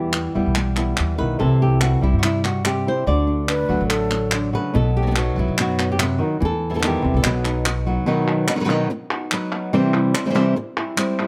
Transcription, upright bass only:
Already playing: E2
0.36 E2
0.46 B1
0.99 D#2
1.21 B1
1.41 C2
2.03 C2
2.13 G2
3.07 D2
3.69 D2
3.80 A1
4.75 B1
5.38 B1
5.48 F#2
6.42 E2
7.04 E2
7.14 B1
7.24 B1

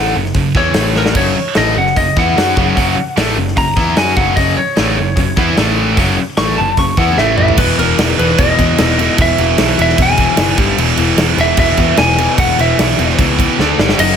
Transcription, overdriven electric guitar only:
Already playing: A2 E3 A3
0.14 F#2 C#3
0.34 F#2 C#3
0.55 E3 B3 E4
0.76 A2 E3 A3
1.15 F#2 C#3 F#3
1.36 muted overdriven electric guitar stroke
1.56 A2 E3 A3
1.77 F#2 C#3
1.97 F#2 C#3
2.17 E3 B3 E4
2.37 F#3 C#4 F#4
2.57 F#2 C#3 F#3
2.77 F#2 C#3 F#3
2.97 muted overdriven electric guitar stroke
3.17 A2 E3 A3
3.38 F#2 C#3
3.58 F#2 C#3
3.78 E3 B3 E4
3.97 F#3 C#4 F#4
4.17 F#2 C#3 F#3
4.38 F#2 C#3 F#3
4.59 muted overdriven electric guitar stroke
4.78 A2 E3 A3
4.97 F#2 C#3
5.18 F#2 C#3
5.38 E3 B3 E4
5.57 A2 E3 A3
5.97 F#2 C#3 F#3
6.18 muted overdriven electric guitar stroke
6.38 A2 E3 A3
6.58 F#2 C#3
6.78 F#2 C#3
6.98 E3 B3 E4
7.18 A2 E3 A3
7.59 E2 B2 E3
7.79 E2 B2 E3
7.99 E2 B2 E3
8.19 E2 B2 E3
8.39 E2 B2 E3
8.59 E2 B2 E3
8.79 E2 B2 E3
8.98 E2 B2 E3
9.18 E2 B2 E3
9.39 E2 B2 E3
9.59 E2 B2 E3
9.78 E2 B2 E3
9.99 E2 B2 E3
10.20 E2 B2 E3
10.39 E2 B2 E3
10.58 G2 D3 G3
10.79 E2 B2 E3
10.98 E2 B2 E3
11.17 E2 B2 E3
11.38 E2 B2 E3
11.58 E2 B2 E3
11.79 E2 B2 E3
11.99 E2 B2 E3
12.18 E2 B2 E3
12.39 E2 B2 E3
12.58 E2 B2 E3
12.78 E2 B2 E3
12.99 E2 B2 E3
13.20 E2 B2 E3
13.39 E2 B2 E3
13.59 D3 A3 D4
13.79 G2 D3 G3
14.00 F#2 C#3 F#3

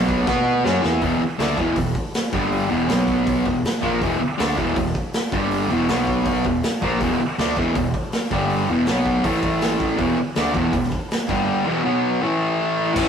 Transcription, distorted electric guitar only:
Already playing: B2 F#3 B3
0.27 B3 F#4 B4
0.64 F#3 C#4 F#4
0.83 E3 B3 E4
1.02 E2 B2 E3
1.21 muted distorted electric guitar stroke
1.38 D3 A3 D4
1.58 E2 B2 E3
1.77 E2 B2
2.33 G2 D3 G3
2.69 E2 B2 E3
2.88 B2 F#3 B3
3.46 E2 B2
3.82 A#2 F3 A#3
4.01 E2 B2 E3
4.21 muted distorted electric guitar stroke
4.38 D3 A3 D4
4.56 E2 B2 E3
4.76 E2 B2
5.32 G2 D3 G3
5.70 E2 B2 E3
5.89 B2 F#3 B3
6.45 E2 B2
6.82 A#2 F3 A#3
7.01 E2 B2 E3
7.21 muted distorted electric guitar stroke
7.39 D3 A3 D4
7.57 E2 B2 E3
7.76 E2 B2
8.31 G2 D3 G3
8.69 E2 B2 E3
8.88 B2 F#3 B3
9.24 A2 E3 A3
9.98 E2 B2 E3
10.17 muted distorted electric guitar stroke
10.36 D3 A3 D4
10.53 E2 B2 E3
10.73 E2 B2
11.29 G2 D3 G3
11.66 E2 B2 E3
11.84 B2 F#3 B3
12.22 A2 E3 A3
12.94 A2 E3 A3

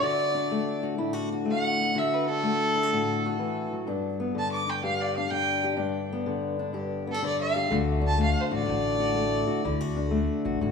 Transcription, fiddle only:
Already playing: D5
1.51 F#5
1.98 E5
2.14 B4
2.28 A4
4.39 A5
4.52 D6
4.70 G5
4.84 F5
5.01 D5
5.16 F5
5.30 G5
7.11 A4
7.26 D5
7.41 F5
8.07 A5
8.23 F5
8.40 C5
8.56 D5

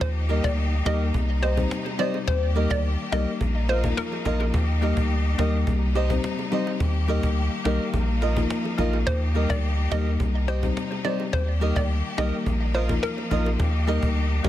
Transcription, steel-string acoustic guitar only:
0.29 G4 A#4 D#5
0.85 G4 A#4 D#5
1.42 G4 C5 D#5
1.99 G4 C5 D#5
2.55 G4 A#4 D#5
3.12 G4 A#4 D#5
3.69 F4 A#4 D#5
4.25 F4 A#4 D#5
4.82 G4 A#4 D#5
5.38 G4 A#4 D#5
5.95 G4 C5 D#5
6.52 G4 C5 D#5
7.08 G4 A#4 D#5
7.65 G4 A#4 D#5
8.22 F4 A#4 D#5
8.78 F4 A#4 D#5
9.35 G4 A#4 D#5
9.91 G4 A#4 D#5
10.48 G4 C5 D#5
11.04 G4 C5 D#5
11.61 G4 A#4 D#5
12.18 G4 A#4 D#5
12.74 F4 A#4 D#5
13.31 F4 A#4 D#5
13.87 G4 A#4 D#5
14.44 G4 A#4 D#5

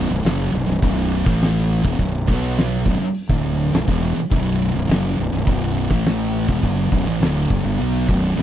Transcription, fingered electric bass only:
0.10 B0
0.25 F#1
0.53 B0
0.68 B0
0.83 B0
1.27 A1
1.85 E1
1.99 B0
2.28 B1
2.86 B0
3.01 muted fingered electric bass stroke
3.29 D1
3.74 B0
3.88 E1
4.17 muted fingered electric bass stroke
4.32 B0
4.75 B0
4.89 F#1
5.19 B0
5.33 B0
5.47 B0
5.91 A1
6.49 E1
6.63 F#1
6.92 B0
7.07 A1
7.21 D1
7.50 F#1
7.65 G1
7.80 B1
8.09 B0
8.38 C#1

